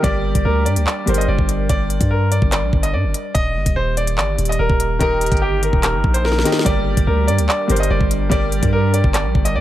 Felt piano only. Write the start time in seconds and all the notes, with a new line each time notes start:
0.03 G3 G4 A#4 D5
1.06 G3 G4 A#4 C5
4.99 D#3 D#4 G4 A#4
6.44 D#3 D#4 G4 A#4
6.65 G3 G4 A#4 D5
7.68 G3 G4 A#4 C5
8.30 G3 G4 A#4 D5